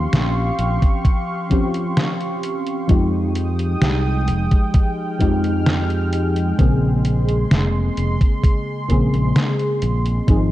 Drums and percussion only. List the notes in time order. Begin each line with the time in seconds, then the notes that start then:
0.13 snare, closed hi-hat
0.59 closed hi-hat
0.82 kick, closed hi-hat
1.05 kick, closed hi-hat
1.51 kick, closed hi-hat
1.74 closed hi-hat
1.97 snare, closed hi-hat
2.21 closed hi-hat
2.43 closed hi-hat
2.67 closed hi-hat
2.89 kick, closed hi-hat
3.35 closed hi-hat
3.59 closed hi-hat
3.82 snare, closed hi-hat
4.28 closed hi-hat
4.51 kick, closed hi-hat
4.74 kick, closed hi-hat
5.20 kick, closed hi-hat
5.44 closed hi-hat
5.66 snare, closed hi-hat
5.90 closed hi-hat
6.13 closed hi-hat
6.36 closed hi-hat
6.59 kick, closed hi-hat
7.05 closed hi-hat
7.29 closed hi-hat
7.51 snare, closed hi-hat
7.97 closed hi-hat
8.21 kick, closed hi-hat
8.44 kick, closed hi-hat
8.90 kick, closed hi-hat
9.14 closed hi-hat
9.36 snare, closed hi-hat
9.59 closed hi-hat
9.82 closed hi-hat
10.06 closed hi-hat
10.28 kick, closed hi-hat